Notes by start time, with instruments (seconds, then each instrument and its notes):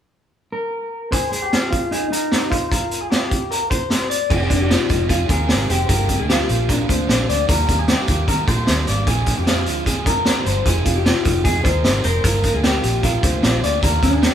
0.52 clean electric guitar A#4
1.12 clean electric guitar G#4 C5, kick, closed hi-hat
1.32 clean electric guitar G#4, closed hi-hat
1.42 clean electric guitar G4
1.53 clean electric guitar F4, snare, closed hi-hat
1.71 clean electric guitar F4, kick, closed hi-hat
1.91 clean electric guitar D#4 G#4, closed hi-hat
2.11 clean electric guitar D#4 A#4, closed hi-hat
2.32 snare, closed hi-hat
2.50 clean electric guitar F4 C5, kick, closed hi-hat
2.71 clean electric guitar A#4, kick, closed hi-hat
2.91 closed hi-hat
3.01 clean electric guitar G#4
3.10 clean electric guitar G4, snare, closed hi-hat
3.31 kick, closed hi-hat
3.51 clean electric guitar A#4, closed hi-hat
3.70 clean electric guitar C5, kick, closed hi-hat
3.90 snare, closed hi-hat
4.10 clean electric guitar D5, closed hi-hat
4.30 fingered electric bass F1, overdriven electric guitar F2 C3 D#3 G#3 C4, clean electric guitar G#4, kick, crash
4.50 fingered electric bass F1, overdriven electric guitar D#3 G#3 C4, clean electric guitar D4, kick, closed hi-hat
4.60 clean electric guitar G4
4.69 overdriven electric guitar F2 C3 D#3 G#3 C4, clean electric guitar D#4 F4, snare, closed hi-hat
4.88 fingered electric bass F1, overdriven electric guitar D#3 G#3 C4, kick, closed hi-hat
5.07 fingered electric bass F2, overdriven electric guitar C3 D#3 G#3 C4, clean electric guitar F4 G#4, kick, closed hi-hat
5.26 fingered electric bass D#2, overdriven electric guitar D#3 G#3 C4, clean electric guitar A#4, kick, closed hi-hat
5.31 clean electric guitar G#4
5.47 fingered electric bass G#1, overdriven electric guitar F2 C3 D#3 G#3 C4, snare, closed hi-hat
5.68 fingered electric bass F1, overdriven electric guitar D#3 G#3 C4, clean electric guitar G4 C5, closed hi-hat
5.88 fingered electric bass G1, overdriven electric guitar G2 D3 F3 A#3 D4, clean electric guitar A#4, kick, closed hi-hat
6.08 overdriven electric guitar F3 A#3 D4, kick, closed hi-hat
6.19 fingered electric bass D2, clean electric guitar G#4
6.28 overdriven electric guitar G2 D3 F3 A#3 D4, clean electric guitar F4 G4, snare, closed hi-hat
6.49 fingered electric bass A#1, overdriven electric guitar F3 A#3 D4, closed hi-hat
6.68 overdriven electric guitar D3 F3 A#3 D4, clean electric guitar D4 A#4, kick, closed hi-hat
6.88 fingered electric bass D2, overdriven electric guitar F3 A#3 D4, clean electric guitar C5, kick, closed hi-hat
7.07 fingered electric bass A#1, overdriven electric guitar G2 D3 F3 A#3 D4, snare, closed hi-hat
7.27 fingered electric bass D2, overdriven electric guitar F3 A#3 D4, clean electric guitar D5, closed hi-hat
7.47 fingered electric bass D#2, overdriven electric guitar D#3 G3 A#3 D4, clean electric guitar A#4, kick, closed hi-hat
7.67 fingered electric bass D#2, overdriven electric guitar G3 A#3 D4, kick, closed hi-hat
7.79 clean electric guitar G#4
7.88 overdriven electric guitar D#3 G3 A#3 D4, clean electric guitar G4, snare, closed hi-hat
8.07 fingered electric bass D#2, overdriven electric guitar G3 A#3 D4, kick, closed hi-hat
8.27 overdriven electric guitar D#3 G3 A#3 D4, fingered electric bass D#3, clean electric guitar A#4, kick, closed hi-hat
8.48 fingered electric bass A#2, overdriven electric guitar G3 A#3 D4, clean electric guitar C5, kick, closed hi-hat
8.67 fingered electric bass D#2, overdriven electric guitar D#3 G3 A#3 D4, snare, closed hi-hat
8.86 fingered electric bass G#1, overdriven electric guitar G3 A#3 D4, clean electric guitar D5, closed hi-hat
9.06 fingered electric bass A#1, overdriven electric guitar A#2 F3 G#3 D4, clean electric guitar G#4, kick, closed hi-hat
9.26 overdriven electric guitar F3 G#3 D4, kick, closed hi-hat
9.37 fingered electric bass F2, clean electric guitar G4
9.47 overdriven electric guitar A#2 F3 G#3 D4, clean electric guitar F4, snare, closed hi-hat
9.65 fingered electric bass D2, overdriven electric guitar F3 G#3 D4, closed hi-hat
9.86 overdriven electric guitar A#2 F3 G#3 D4, clean electric guitar G#4, kick, closed hi-hat
10.06 fingered electric bass F2, overdriven electric guitar F3 G#3 D4, clean electric guitar A#4, kick, closed hi-hat
10.25 fingered electric bass D2, overdriven electric guitar A#2 F3 G#3 D4, snare, closed hi-hat
10.46 fingered electric bass G1, overdriven electric guitar F3 G#3 D4, clean electric guitar C5, closed hi-hat
10.65 fingered electric bass F1, overdriven electric guitar F2 C3 D#3 G#3 D#4, clean electric guitar G#4, kick, closed hi-hat
10.85 fingered electric bass F1, overdriven electric guitar D#3 G#3 D#4, clean electric guitar F4, kick, closed hi-hat
10.96 clean electric guitar G4
11.05 overdriven electric guitar F2 C3 D#3 G#3 D#4, clean electric guitar F4 G4, snare, closed hi-hat
11.25 fingered electric bass F1, overdriven electric guitar D#3 G#3 D#4, kick, closed hi-hat
11.44 fingered electric bass F2, overdriven electric guitar C3 D#3 G#3 D#4, clean electric guitar G#4, kick, closed hi-hat
11.64 fingered electric bass D#2, overdriven electric guitar D#3 G#3 D#4, clean electric guitar A#4 C5, kick, closed hi-hat
11.83 fingered electric bass G#1, overdriven electric guitar F2 C3 D#3 G#3 D#4, snare, closed hi-hat
12.04 fingered electric bass F1, overdriven electric guitar D#3 G#3 D#4, clean electric guitar A#4 C5, closed hi-hat
12.24 fingered electric bass G1, overdriven electric guitar G2 D3 F3 A#3 D4, clean electric guitar A#4, kick, closed hi-hat
12.43 overdriven electric guitar F3 A#3 D4, kick, closed hi-hat
12.54 fingered electric bass D2, clean electric guitar G#4
12.63 overdriven electric guitar G2 D3 F3 A#3 D4, clean electric guitar G4, snare, closed hi-hat
12.83 fingered electric bass A#1, overdriven electric guitar F3 A#3 D4, closed hi-hat
13.03 overdriven electric guitar D3 F3 A#3 D4, clean electric guitar F4 A#4, kick, closed hi-hat
13.23 fingered electric bass D2, overdriven electric guitar F3 A#3 D4, clean electric guitar C5, kick, closed hi-hat
13.42 fingered electric bass A#1, overdriven electric guitar G2 D3 F3 A#3 D4, snare, closed hi-hat
13.61 fingered electric bass D2, overdriven electric guitar F3 A#3 D4, clean electric guitar D5, closed hi-hat
13.81 fingered electric bass D#2, overdriven electric guitar D#3 G3 A#3 D4, clean electric guitar A#4, kick, closed hi-hat
14.01 fingered electric bass D#2, overdriven electric guitar G3 A#3 D4, clean electric guitar D4, kick, closed hi-hat
14.13 clean electric guitar G#4
14.21 overdriven electric guitar D#3 G3 A#3 D4, clean electric guitar G4, snare, closed hi-hat